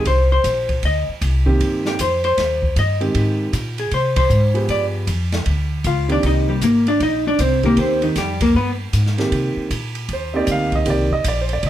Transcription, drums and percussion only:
0.05 kick soft
0.05 ride medium
0.44 kick soft
0.44 hi-hat pedal soft
0.44 ride medium
0.69 kick soft
0.69 ride soft
0.83 kick soft
0.83 ride medium
1.21 kick soft
1.21 hi-hat pedal soft
1.21 ride medium
1.47 kick medium
1.60 kick soft
1.60 ride medium
1.85 snare soft
1.99 kick soft
1.99 hi-hat pedal medium
1.99 ride medium
2.24 ride soft
2.38 kick soft
2.38 snare soft
2.38 ride medium
2.62 kick medium
2.76 kick soft
2.76 hi-hat pedal soft
2.76 ride medium
3.01 ride soft
3.15 kick soft
3.15 ride medium
3.53 kick soft
3.53 hi-hat pedal medium
3.53 ride medium
3.78 ride soft
3.91 kick soft
3.91 ride medium
4.16 kick medium
4.16 ride medium
4.30 hi-hat pedal soft
4.55 ride soft
4.69 kick soft
4.69 ride medium
5.07 kick soft
5.07 hi-hat pedal soft
5.07 ride medium
5.32 snare soft
5.32 ride soft
5.46 kick soft
5.46 ride medium
5.84 kick soft
5.84 hi-hat pedal medium
5.84 ride medium
6.09 ride soft
6.23 kick soft
6.23 ride medium
6.61 kick soft
6.61 hi-hat pedal medium
6.61 ride medium
6.87 ride soft
7.00 kick soft
7.00 ride medium
7.39 kick soft
7.39 hi-hat pedal soft
7.39 ride medium
7.63 kick soft
7.63 ride soft
7.77 kick soft
7.77 ride medium
8.02 ride soft
8.16 kick soft
8.16 snare soft
8.16 hi-hat pedal medium
8.16 ride medium
8.41 kick medium
8.41 ride medium
8.55 kick soft
8.93 kick soft
8.93 hi-hat pedal soft
8.93 ride medium
9.07 snare soft
9.18 snare soft
9.18 ride soft
9.32 kick soft
9.32 ride medium
9.70 kick soft
9.70 hi-hat pedal soft
9.70 ride medium
9.95 ride soft
10.09 kick soft
10.09 ride medium
10.47 kick soft
10.47 hi-hat pedal medium
10.47 ride medium
10.72 kick soft
10.72 ride soft
10.86 kick soft
10.86 ride medium
11.11 kick soft
11.24 kick soft
11.24 hi-hat pedal medium
11.24 ride medium
11.49 ride soft
11.63 kick soft
11.63 ride medium

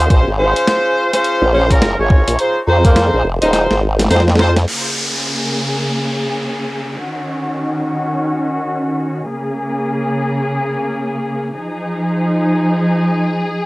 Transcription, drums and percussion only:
0.10 kick loud
0.10 closed hi-hat medium
0.56 closed hi-hat medium
0.67 snare loud
0.67 closed hi-hat medium
1.13 snare soft
1.13 closed hi-hat medium
1.24 closed hi-hat soft
1.70 kick medium
1.70 closed hi-hat medium
1.82 snare loud
1.82 closed hi-hat soft
2.10 kick loud
2.28 closed hi-hat medium
2.39 closed hi-hat medium
2.85 kick loud
2.85 closed hi-hat medium
2.96 snare loud
2.96 closed hi-hat medium
3.42 closed hi-hat medium
3.53 snare medium
3.53 closed hi-hat soft
3.71 snare medium
3.99 snare medium
3.99 closed hi-hat medium
4.01 snare medium
4.05 snare soft
4.07 snare soft
4.09 snare soft
4.11 snare soft
4.11 closed hi-hat medium
4.16 snare soft
4.20 snare soft
4.28 snare medium
4.29 snare medium
4.35 snare medium
4.39 snare medium
4.56 snare medium
4.56 closed hi-hat medium
4.68 crash medium

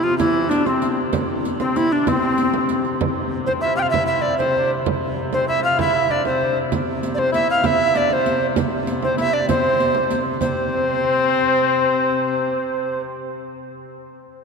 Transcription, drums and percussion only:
0.19 riq medium
0.19 frame drum medium
0.51 riq medium
0.66 frame drum medium
0.82 riq medium
0.82 frame drum soft
1.13 riq medium
1.13 frame drum medium
1.45 riq medium
1.60 frame drum medium
1.76 riq medium
1.76 frame drum soft
2.07 riq medium
2.07 frame drum loud
2.22 riq soft
2.38 riq medium
2.38 frame drum soft
2.54 frame drum medium
2.69 riq medium
2.85 riq soft
2.85 frame drum soft
3.01 frame drum loud
3.47 frame drum medium
3.63 frame drum soft
3.94 frame drum medium
4.40 frame drum medium
4.55 frame drum soft
4.86 frame drum medium
5.33 frame drum medium
5.49 frame drum soft
5.79 frame drum loud
5.94 frame drum soft
6.10 frame drum soft
6.25 frame drum medium
6.41 frame drum soft
6.56 frame drum soft
6.72 riq medium
6.72 frame drum medium
7.03 riq medium
7.18 frame drum medium
7.33 riq medium
7.33 frame drum soft
7.64 riq medium
7.64 frame drum loud
7.95 riq medium
8.10 frame drum medium
8.26 riq medium
8.26 frame drum soft
8.56 riq medium
8.56 frame drum medium
8.87 riq medium
9.03 frame drum medium
9.18 riq medium
9.18 frame drum soft
9.49 riq medium
9.49 frame drum medium
9.64 riq soft
9.80 riq medium
9.80 frame drum soft
9.95 frame drum medium
10.11 riq medium
10.41 riq medium
10.41 frame drum medium

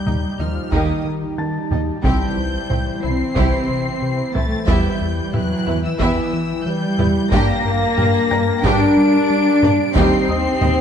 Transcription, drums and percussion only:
0.07 taiko mid medium
0.72 taiko medium
1.72 taiko mid soft
2.04 taiko loud
2.70 taiko mid medium
3.36 taiko medium
4.35 taiko mid soft
4.68 taiko loud
5.34 taiko mid medium
6.00 taiko medium
6.99 taiko mid medium
7.32 taiko loud
7.98 taiko mid medium
8.64 taiko medium
9.63 taiko mid medium
9.96 taiko loud
10.61 taiko mid medium

